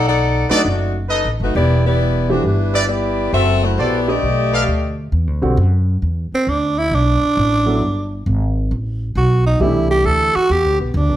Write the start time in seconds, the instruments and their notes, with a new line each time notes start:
Already playing: upright bass B1
0.08 saxophone section D#4 A4 D5 F#5
0.50 grand piano F#3 A3 D4 D#4, saxophone section D4 F#4 D#5, trumpet section D#4 A4 B4 D5, muted upright bass stroke
0.54 saxophone section A3
0.65 upright bass F#1, saxophone section A3 D#4 F#4 D5
1.09 trumpet section D#4 A4 B4 D#5
1.25 upright bass A1
1.40 upright bass F#1, saxophone section A3 D#4 F#4 B4
1.55 upright bass E1, saxophone section B3 E4 G4 D5
1.86 saxophone section B3 E4 G4 D5
2.29 grand piano E3 A3 D4 G4, saxophone section A3 D4 F#4 C5
2.44 upright bass G1, saxophone section G3 D4 E4 B4
2.74 trumpet section E4 G4 B4 D5
2.89 saxophone section B3 E4 G4 D5
3.33 upright bass F#1, saxophone section C4 F#4 A4 E5, trumpet section F#4 A4 C5 E5
3.64 saxophone section A3 E4 F#4 C5
3.78 upright bass A#1, saxophone section B3 E4 G4 D5, trumpet section F#4 A4 C5 D5
4.08 grand piano A3 D4 G4 B4, saxophone section A3 G4 D5 D#5
4.23 upright bass B1
4.53 trumpet section G4 A4 B4 F5
4.67 upright bass D2
5.12 upright bass E2
5.27 upright bass D2
5.42 upright bass B1, grand piano D3 G3 C4 F#4
5.57 upright bass F#2
6.02 upright bass E2
6.32 tenor saxophone C4, muted upright bass stroke
6.47 upright bass D2, tenor saxophone D4
6.78 tenor saxophone E4
6.91 upright bass B1, tenor saxophone D4
7.37 upright bass A1
7.66 grand piano F#3 B3 E4 A4
7.82 upright bass G1
8.26 upright bass G#1
8.71 upright bass A1
9.15 upright bass B1, tenor saxophone F#4
9.46 tenor saxophone D#4
9.60 upright bass C2, grand piano E3 A3 D4 G4, tenor saxophone E4
9.91 tenor saxophone G4
10.05 upright bass D2, tenor saxophone A4
10.35 tenor saxophone F#4, muted upright bass stroke
10.50 upright bass E2, tenor saxophone G4
10.65 upright bass D2
10.79 upright bass B1, tenor saxophone B3
10.94 upright bass D2, tenor saxophone D4
11.09 upright bass B1